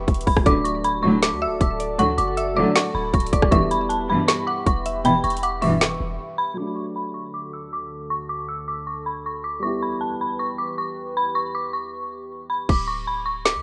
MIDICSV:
0, 0, Header, 1, 8, 480
1, 0, Start_track
1, 0, Tempo, 382166
1, 580, Time_signature, 4, 2, 24, 8
1, 17113, End_track
2, 0, Start_track
2, 0, Title_t, "Synth bell"
2, 0, Program_c, 0, 98
2, 0, Note_on_c, 0, 85, 80
2, 288, Note_off_c, 0, 85, 0
2, 336, Note_on_c, 0, 83, 84
2, 562, Note_off_c, 0, 83, 0
2, 584, Note_on_c, 0, 86, 97
2, 806, Note_off_c, 0, 86, 0
2, 810, Note_on_c, 0, 85, 85
2, 1038, Note_off_c, 0, 85, 0
2, 1061, Note_on_c, 0, 83, 92
2, 1284, Note_off_c, 0, 83, 0
2, 1289, Note_on_c, 0, 85, 80
2, 1518, Note_off_c, 0, 85, 0
2, 1538, Note_on_c, 0, 86, 88
2, 1762, Note_off_c, 0, 86, 0
2, 1784, Note_on_c, 0, 88, 85
2, 2006, Note_off_c, 0, 88, 0
2, 2027, Note_on_c, 0, 86, 89
2, 2247, Note_off_c, 0, 86, 0
2, 2497, Note_on_c, 0, 85, 103
2, 2722, Note_off_c, 0, 85, 0
2, 2735, Note_on_c, 0, 86, 89
2, 2961, Note_off_c, 0, 86, 0
2, 2978, Note_on_c, 0, 88, 83
2, 3203, Note_off_c, 0, 88, 0
2, 3221, Note_on_c, 0, 86, 87
2, 3444, Note_off_c, 0, 86, 0
2, 3460, Note_on_c, 0, 85, 86
2, 3684, Note_off_c, 0, 85, 0
2, 3701, Note_on_c, 0, 83, 77
2, 3924, Note_off_c, 0, 83, 0
2, 3951, Note_on_c, 0, 85, 85
2, 4169, Note_off_c, 0, 85, 0
2, 4178, Note_on_c, 0, 86, 87
2, 4403, Note_off_c, 0, 86, 0
2, 4412, Note_on_c, 0, 85, 104
2, 4640, Note_off_c, 0, 85, 0
2, 4660, Note_on_c, 0, 83, 88
2, 4884, Note_off_c, 0, 83, 0
2, 4890, Note_on_c, 0, 81, 79
2, 5118, Note_off_c, 0, 81, 0
2, 5144, Note_on_c, 0, 83, 84
2, 5366, Note_off_c, 0, 83, 0
2, 5373, Note_on_c, 0, 85, 94
2, 5600, Note_off_c, 0, 85, 0
2, 5612, Note_on_c, 0, 86, 81
2, 5839, Note_off_c, 0, 86, 0
2, 5861, Note_on_c, 0, 85, 90
2, 6084, Note_off_c, 0, 85, 0
2, 6349, Note_on_c, 0, 83, 106
2, 6568, Note_off_c, 0, 83, 0
2, 6578, Note_on_c, 0, 85, 95
2, 6803, Note_off_c, 0, 85, 0
2, 6823, Note_on_c, 0, 86, 91
2, 7045, Note_off_c, 0, 86, 0
2, 7056, Note_on_c, 0, 85, 78
2, 7968, Note_off_c, 0, 85, 0
2, 8015, Note_on_c, 0, 83, 86
2, 8241, Note_off_c, 0, 83, 0
2, 8262, Note_on_c, 0, 86, 89
2, 8485, Note_off_c, 0, 86, 0
2, 8488, Note_on_c, 0, 85, 76
2, 8717, Note_off_c, 0, 85, 0
2, 8739, Note_on_c, 0, 83, 84
2, 8963, Note_off_c, 0, 83, 0
2, 8968, Note_on_c, 0, 85, 73
2, 9197, Note_off_c, 0, 85, 0
2, 9217, Note_on_c, 0, 86, 81
2, 9442, Note_off_c, 0, 86, 0
2, 9462, Note_on_c, 0, 88, 76
2, 9685, Note_off_c, 0, 88, 0
2, 9707, Note_on_c, 0, 86, 80
2, 9927, Note_off_c, 0, 86, 0
2, 10177, Note_on_c, 0, 85, 98
2, 10402, Note_off_c, 0, 85, 0
2, 10415, Note_on_c, 0, 86, 87
2, 10641, Note_off_c, 0, 86, 0
2, 10657, Note_on_c, 0, 88, 80
2, 10882, Note_off_c, 0, 88, 0
2, 10901, Note_on_c, 0, 86, 82
2, 11124, Note_off_c, 0, 86, 0
2, 11139, Note_on_c, 0, 85, 75
2, 11363, Note_off_c, 0, 85, 0
2, 11380, Note_on_c, 0, 83, 76
2, 11604, Note_off_c, 0, 83, 0
2, 11630, Note_on_c, 0, 85, 76
2, 11849, Note_off_c, 0, 85, 0
2, 11856, Note_on_c, 0, 86, 82
2, 12081, Note_off_c, 0, 86, 0
2, 12091, Note_on_c, 0, 85, 100
2, 12319, Note_off_c, 0, 85, 0
2, 12340, Note_on_c, 0, 83, 84
2, 12564, Note_off_c, 0, 83, 0
2, 12569, Note_on_c, 0, 81, 73
2, 12798, Note_off_c, 0, 81, 0
2, 12825, Note_on_c, 0, 83, 77
2, 13046, Note_off_c, 0, 83, 0
2, 13054, Note_on_c, 0, 85, 90
2, 13280, Note_off_c, 0, 85, 0
2, 13293, Note_on_c, 0, 86, 74
2, 13520, Note_off_c, 0, 86, 0
2, 13540, Note_on_c, 0, 85, 86
2, 13764, Note_off_c, 0, 85, 0
2, 14028, Note_on_c, 0, 83, 104
2, 14248, Note_off_c, 0, 83, 0
2, 14257, Note_on_c, 0, 85, 93
2, 14482, Note_off_c, 0, 85, 0
2, 14503, Note_on_c, 0, 86, 82
2, 14725, Note_off_c, 0, 86, 0
2, 14736, Note_on_c, 0, 85, 75
2, 15648, Note_off_c, 0, 85, 0
2, 15696, Note_on_c, 0, 83, 82
2, 15921, Note_off_c, 0, 83, 0
2, 15944, Note_on_c, 0, 86, 96
2, 16166, Note_off_c, 0, 86, 0
2, 16171, Note_on_c, 0, 85, 82
2, 16399, Note_off_c, 0, 85, 0
2, 16421, Note_on_c, 0, 83, 88
2, 16644, Note_off_c, 0, 83, 0
2, 16650, Note_on_c, 0, 85, 79
2, 16878, Note_off_c, 0, 85, 0
2, 16896, Note_on_c, 0, 86, 88
2, 17113, Note_off_c, 0, 86, 0
2, 17113, End_track
3, 0, Start_track
3, 0, Title_t, "Synth pluck"
3, 0, Program_c, 1, 84
3, 576, Note_on_c, 1, 74, 106
3, 1029, Note_off_c, 1, 74, 0
3, 1781, Note_on_c, 1, 76, 97
3, 2232, Note_off_c, 1, 76, 0
3, 2260, Note_on_c, 1, 74, 80
3, 2488, Note_off_c, 1, 74, 0
3, 2501, Note_on_c, 1, 78, 109
3, 2952, Note_off_c, 1, 78, 0
3, 2982, Note_on_c, 1, 76, 87
3, 3209, Note_off_c, 1, 76, 0
3, 3222, Note_on_c, 1, 74, 96
3, 3449, Note_off_c, 1, 74, 0
3, 3462, Note_on_c, 1, 78, 90
3, 4138, Note_off_c, 1, 78, 0
3, 4181, Note_on_c, 1, 74, 73
3, 4408, Note_off_c, 1, 74, 0
3, 4422, Note_on_c, 1, 76, 105
3, 4872, Note_off_c, 1, 76, 0
3, 5620, Note_on_c, 1, 78, 80
3, 6071, Note_off_c, 1, 78, 0
3, 6103, Note_on_c, 1, 76, 85
3, 6329, Note_off_c, 1, 76, 0
3, 6342, Note_on_c, 1, 79, 115
3, 6792, Note_off_c, 1, 79, 0
3, 6819, Note_on_c, 1, 78, 86
3, 7048, Note_off_c, 1, 78, 0
3, 7060, Note_on_c, 1, 76, 81
3, 7288, Note_off_c, 1, 76, 0
3, 17113, End_track
4, 0, Start_track
4, 0, Title_t, "Ambient pad"
4, 0, Program_c, 2, 92
4, 0, Note_on_c, 2, 67, 85
4, 0, Note_on_c, 2, 71, 78
4, 0, Note_on_c, 2, 76, 78
4, 0, Note_on_c, 2, 83, 92
4, 541, Note_off_c, 2, 71, 0
4, 541, Note_off_c, 2, 76, 0
4, 542, Note_off_c, 2, 67, 0
4, 542, Note_off_c, 2, 83, 0
4, 579, Note_on_c, 2, 66, 86
4, 579, Note_on_c, 2, 69, 74
4, 579, Note_on_c, 2, 74, 74
4, 579, Note_on_c, 2, 81, 92
4, 4381, Note_off_c, 2, 66, 0
4, 4381, Note_off_c, 2, 69, 0
4, 4381, Note_off_c, 2, 74, 0
4, 4381, Note_off_c, 2, 81, 0
4, 4420, Note_on_c, 2, 67, 84
4, 4420, Note_on_c, 2, 71, 75
4, 4420, Note_on_c, 2, 76, 76
4, 4420, Note_on_c, 2, 83, 91
4, 8221, Note_off_c, 2, 67, 0
4, 8221, Note_off_c, 2, 71, 0
4, 8222, Note_off_c, 2, 76, 0
4, 8222, Note_off_c, 2, 83, 0
4, 8259, Note_on_c, 2, 38, 81
4, 8259, Note_on_c, 2, 50, 70
4, 8259, Note_on_c, 2, 66, 71
4, 8259, Note_on_c, 2, 69, 88
4, 12061, Note_off_c, 2, 38, 0
4, 12061, Note_off_c, 2, 50, 0
4, 12061, Note_off_c, 2, 66, 0
4, 12061, Note_off_c, 2, 69, 0
4, 12099, Note_on_c, 2, 40, 78
4, 12099, Note_on_c, 2, 52, 76
4, 12099, Note_on_c, 2, 67, 74
4, 12099, Note_on_c, 2, 71, 88
4, 15901, Note_off_c, 2, 40, 0
4, 15901, Note_off_c, 2, 52, 0
4, 15901, Note_off_c, 2, 67, 0
4, 15901, Note_off_c, 2, 71, 0
4, 17113, End_track
5, 0, Start_track
5, 0, Title_t, "Grand piano"
5, 0, Program_c, 3, 0
5, 0, Control_c, 3, 64, 127
5, 0, Note_on_c, 3, 55, 73
5, 0, Note_on_c, 3, 59, 63
5, 0, Note_on_c, 3, 64, 64
5, 0, Note_on_c, 3, 67, 72
5, 505, Note_off_c, 3, 55, 0
5, 521, Note_off_c, 3, 59, 0
5, 531, Note_on_c, 3, 54, 70
5, 537, Note_off_c, 3, 64, 0
5, 553, Note_off_c, 3, 67, 0
5, 562, Note_on_c, 3, 57, 64
5, 594, Control_c, 3, 64, 0
5, 594, Note_on_c, 3, 62, 66
5, 626, Note_on_c, 3, 66, 72
5, 789, Control_c, 3, 64, 127
5, 4345, Note_off_c, 3, 54, 0
5, 4361, Note_off_c, 3, 57, 0
5, 4371, Note_on_c, 3, 55, 74
5, 4377, Note_off_c, 3, 62, 0
5, 4393, Note_off_c, 3, 66, 0
5, 4403, Note_on_c, 3, 59, 67
5, 4434, Note_on_c, 3, 64, 62
5, 4435, Control_c, 3, 64, 0
5, 4466, Note_on_c, 3, 67, 75
5, 4636, Control_c, 3, 64, 127
5, 8185, Note_off_c, 3, 55, 0
5, 8201, Note_off_c, 3, 59, 0
5, 8213, Note_on_c, 3, 54, 62
5, 8217, Note_off_c, 3, 64, 0
5, 8233, Note_off_c, 3, 67, 0
5, 8245, Note_on_c, 3, 57, 59
5, 8274, Control_c, 3, 64, 0
5, 8277, Note_on_c, 3, 62, 55
5, 8309, Note_on_c, 3, 66, 72
5, 8512, Control_c, 3, 64, 127
5, 12026, Note_off_c, 3, 54, 0
5, 12042, Note_off_c, 3, 57, 0
5, 12050, Note_on_c, 3, 55, 61
5, 12058, Note_off_c, 3, 62, 0
5, 12074, Note_off_c, 3, 66, 0
5, 12082, Note_on_c, 3, 59, 60
5, 12114, Note_on_c, 3, 64, 60
5, 12119, Control_c, 3, 64, 0
5, 12145, Note_on_c, 3, 67, 74
5, 12317, Control_c, 3, 64, 127
5, 15865, Note_off_c, 3, 55, 0
5, 15881, Note_off_c, 3, 59, 0
5, 15896, Note_off_c, 3, 64, 0
5, 15912, Note_off_c, 3, 67, 0
5, 15955, Control_c, 3, 64, 0
5, 17113, End_track
6, 0, Start_track
6, 0, Title_t, "String section"
6, 0, Program_c, 4, 48
6, 580, Note_on_c, 4, 42, 91
6, 580, Note_on_c, 4, 45, 99
6, 580, Note_on_c, 4, 50, 110
6, 682, Note_off_c, 4, 42, 0
6, 682, Note_off_c, 4, 45, 0
6, 682, Note_off_c, 4, 50, 0
6, 1300, Note_on_c, 4, 45, 108
6, 1300, Note_on_c, 4, 50, 96
6, 1300, Note_on_c, 4, 54, 111
6, 1642, Note_off_c, 4, 45, 0
6, 1642, Note_off_c, 4, 50, 0
6, 1642, Note_off_c, 4, 54, 0
6, 2500, Note_on_c, 4, 45, 102
6, 2500, Note_on_c, 4, 50, 95
6, 2500, Note_on_c, 4, 54, 107
6, 2602, Note_off_c, 4, 45, 0
6, 2602, Note_off_c, 4, 50, 0
6, 2602, Note_off_c, 4, 54, 0
6, 3220, Note_on_c, 4, 45, 108
6, 3220, Note_on_c, 4, 50, 102
6, 3220, Note_on_c, 4, 54, 118
6, 3562, Note_off_c, 4, 45, 0
6, 3562, Note_off_c, 4, 50, 0
6, 3562, Note_off_c, 4, 54, 0
6, 4420, Note_on_c, 4, 43, 100
6, 4420, Note_on_c, 4, 47, 91
6, 4420, Note_on_c, 4, 52, 105
6, 4522, Note_off_c, 4, 43, 0
6, 4522, Note_off_c, 4, 47, 0
6, 4522, Note_off_c, 4, 52, 0
6, 5141, Note_on_c, 4, 43, 100
6, 5141, Note_on_c, 4, 47, 104
6, 5141, Note_on_c, 4, 52, 104
6, 5482, Note_off_c, 4, 43, 0
6, 5482, Note_off_c, 4, 47, 0
6, 5482, Note_off_c, 4, 52, 0
6, 6340, Note_on_c, 4, 43, 89
6, 6340, Note_on_c, 4, 47, 107
6, 6340, Note_on_c, 4, 52, 107
6, 6442, Note_off_c, 4, 43, 0
6, 6442, Note_off_c, 4, 47, 0
6, 6442, Note_off_c, 4, 52, 0
6, 7060, Note_on_c, 4, 43, 104
6, 7060, Note_on_c, 4, 47, 107
6, 7060, Note_on_c, 4, 52, 117
6, 7402, Note_off_c, 4, 43, 0
6, 7402, Note_off_c, 4, 47, 0
6, 7402, Note_off_c, 4, 52, 0
6, 17113, End_track
7, 0, Start_track
7, 0, Title_t, "808-style bass"
7, 0, Program_c, 5, 38
7, 98, Note_on_c, 5, 28, 111
7, 329, Note_off_c, 5, 28, 0
7, 340, Note_on_c, 5, 28, 105
7, 452, Note_off_c, 5, 28, 0
7, 460, Note_on_c, 5, 28, 101
7, 572, Note_off_c, 5, 28, 0
7, 580, Note_on_c, 5, 26, 110
7, 1659, Note_on_c, 5, 38, 93
7, 1678, Note_off_c, 5, 26, 0
7, 1840, Note_on_c, 5, 26, 100
7, 1859, Note_off_c, 5, 38, 0
7, 2011, Note_off_c, 5, 26, 0
7, 2018, Note_on_c, 5, 26, 109
7, 2500, Note_on_c, 5, 38, 100
7, 2519, Note_off_c, 5, 26, 0
7, 2728, Note_off_c, 5, 38, 0
7, 2740, Note_on_c, 5, 30, 105
7, 3316, Note_off_c, 5, 30, 0
7, 3700, Note_on_c, 5, 26, 105
7, 3930, Note_off_c, 5, 26, 0
7, 3939, Note_on_c, 5, 26, 108
7, 4170, Note_off_c, 5, 26, 0
7, 4180, Note_on_c, 5, 26, 104
7, 4295, Note_off_c, 5, 26, 0
7, 4300, Note_on_c, 5, 26, 106
7, 4413, Note_off_c, 5, 26, 0
7, 4420, Note_on_c, 5, 28, 115
7, 5226, Note_off_c, 5, 28, 0
7, 5859, Note_on_c, 5, 28, 109
7, 6550, Note_off_c, 5, 28, 0
7, 6580, Note_on_c, 5, 28, 107
7, 7502, Note_off_c, 5, 28, 0
7, 7539, Note_on_c, 5, 28, 105
7, 7770, Note_off_c, 5, 28, 0
7, 15940, Note_on_c, 5, 26, 105
7, 17019, Note_on_c, 5, 38, 97
7, 17038, Note_off_c, 5, 26, 0
7, 17113, Note_off_c, 5, 38, 0
7, 17113, End_track
8, 0, Start_track
8, 0, Title_t, "Drums"
8, 98, Note_on_c, 9, 36, 100
8, 100, Note_on_c, 9, 42, 43
8, 181, Note_off_c, 9, 42, 0
8, 181, Note_on_c, 9, 42, 56
8, 224, Note_off_c, 9, 36, 0
8, 260, Note_off_c, 9, 42, 0
8, 260, Note_on_c, 9, 42, 75
8, 340, Note_on_c, 9, 36, 95
8, 340, Note_on_c, 9, 46, 61
8, 386, Note_off_c, 9, 42, 0
8, 459, Note_on_c, 9, 37, 103
8, 460, Note_off_c, 9, 36, 0
8, 460, Note_on_c, 9, 36, 94
8, 466, Note_off_c, 9, 46, 0
8, 580, Note_off_c, 9, 36, 0
8, 580, Note_on_c, 9, 36, 122
8, 580, Note_on_c, 9, 42, 74
8, 585, Note_off_c, 9, 37, 0
8, 705, Note_off_c, 9, 36, 0
8, 705, Note_off_c, 9, 42, 0
8, 819, Note_on_c, 9, 42, 81
8, 945, Note_off_c, 9, 42, 0
8, 1060, Note_on_c, 9, 42, 75
8, 1185, Note_off_c, 9, 42, 0
8, 1539, Note_on_c, 9, 42, 85
8, 1540, Note_on_c, 9, 38, 124
8, 1665, Note_off_c, 9, 38, 0
8, 1665, Note_off_c, 9, 42, 0
8, 2018, Note_on_c, 9, 36, 102
8, 2019, Note_on_c, 9, 42, 72
8, 2144, Note_off_c, 9, 36, 0
8, 2145, Note_off_c, 9, 42, 0
8, 2260, Note_on_c, 9, 42, 83
8, 2386, Note_off_c, 9, 42, 0
8, 2500, Note_on_c, 9, 42, 74
8, 2625, Note_off_c, 9, 42, 0
8, 2740, Note_on_c, 9, 42, 76
8, 2865, Note_off_c, 9, 42, 0
8, 2980, Note_on_c, 9, 42, 76
8, 3106, Note_off_c, 9, 42, 0
8, 3461, Note_on_c, 9, 38, 125
8, 3461, Note_on_c, 9, 42, 84
8, 3586, Note_off_c, 9, 42, 0
8, 3587, Note_off_c, 9, 38, 0
8, 3939, Note_on_c, 9, 36, 100
8, 3941, Note_on_c, 9, 42, 44
8, 4021, Note_off_c, 9, 42, 0
8, 4021, Note_on_c, 9, 42, 59
8, 4065, Note_off_c, 9, 36, 0
8, 4100, Note_off_c, 9, 42, 0
8, 4100, Note_on_c, 9, 42, 71
8, 4180, Note_off_c, 9, 42, 0
8, 4180, Note_on_c, 9, 36, 96
8, 4180, Note_on_c, 9, 42, 85
8, 4300, Note_off_c, 9, 36, 0
8, 4300, Note_on_c, 9, 36, 98
8, 4300, Note_on_c, 9, 37, 101
8, 4306, Note_off_c, 9, 42, 0
8, 4420, Note_off_c, 9, 36, 0
8, 4420, Note_on_c, 9, 36, 121
8, 4420, Note_on_c, 9, 42, 73
8, 4425, Note_off_c, 9, 37, 0
8, 4546, Note_off_c, 9, 36, 0
8, 4546, Note_off_c, 9, 42, 0
8, 4660, Note_on_c, 9, 42, 81
8, 4786, Note_off_c, 9, 42, 0
8, 4900, Note_on_c, 9, 42, 77
8, 5025, Note_off_c, 9, 42, 0
8, 5380, Note_on_c, 9, 38, 121
8, 5380, Note_on_c, 9, 42, 88
8, 5505, Note_off_c, 9, 42, 0
8, 5506, Note_off_c, 9, 38, 0
8, 5859, Note_on_c, 9, 36, 101
8, 5860, Note_on_c, 9, 42, 68
8, 5984, Note_off_c, 9, 36, 0
8, 5985, Note_off_c, 9, 42, 0
8, 6100, Note_on_c, 9, 42, 88
8, 6226, Note_off_c, 9, 42, 0
8, 6340, Note_on_c, 9, 42, 74
8, 6466, Note_off_c, 9, 42, 0
8, 6580, Note_on_c, 9, 42, 49
8, 6660, Note_off_c, 9, 42, 0
8, 6660, Note_on_c, 9, 42, 65
8, 6740, Note_off_c, 9, 42, 0
8, 6740, Note_on_c, 9, 42, 81
8, 6820, Note_off_c, 9, 42, 0
8, 6820, Note_on_c, 9, 42, 73
8, 6946, Note_off_c, 9, 42, 0
8, 7060, Note_on_c, 9, 46, 61
8, 7186, Note_off_c, 9, 46, 0
8, 7300, Note_on_c, 9, 42, 86
8, 7301, Note_on_c, 9, 38, 126
8, 7426, Note_off_c, 9, 38, 0
8, 7426, Note_off_c, 9, 42, 0
8, 15940, Note_on_c, 9, 36, 117
8, 15940, Note_on_c, 9, 49, 97
8, 16065, Note_off_c, 9, 36, 0
8, 16065, Note_off_c, 9, 49, 0
8, 16900, Note_on_c, 9, 38, 120
8, 17026, Note_off_c, 9, 38, 0
8, 17113, End_track
0, 0, End_of_file